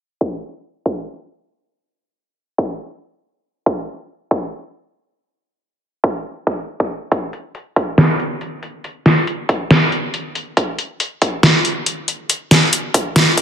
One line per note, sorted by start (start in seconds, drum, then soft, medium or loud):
0.21 kick loud
0.86 kick loud
2.58 kick loud
3.66 kick loud
4.31 kick loud
6.04 kick loud
6.47 kick medium
6.80 kick medium
7.12 kick loud
7.12 closed hi-hat medium
7.33 closed hi-hat soft
7.55 closed hi-hat medium
7.76 kick loud
7.76 closed hi-hat soft
7.98 snare loud
7.98 closed hi-hat medium
8.20 closed hi-hat soft
8.41 closed hi-hat medium
8.63 closed hi-hat soft
8.84 closed hi-hat medium
9.06 snare medium
9.06 closed hi-hat soft
9.27 closed hi-hat medium
9.49 kick medium
9.49 closed hi-hat soft
9.71 snare loud
9.71 closed hi-hat medium
9.92 closed hi-hat soft
10.14 closed hi-hat medium
10.35 closed hi-hat soft
10.57 kick loud
10.57 closed hi-hat medium
10.79 closed hi-hat soft
11.00 closed hi-hat medium
11.22 kick medium
11.22 closed hi-hat soft
11.43 snare loud
11.43 closed hi-hat medium
11.65 closed hi-hat soft
11.86 closed hi-hat medium
12.08 closed hi-hat soft
12.30 closed hi-hat medium
12.51 snare medium
12.51 closed hi-hat medium
12.73 closed hi-hat medium
12.94 kick medium
12.94 closed hi-hat medium
13.16 snare loud
13.16 closed hi-hat medium
13.37 kick medium
13.37 closed hi-hat medium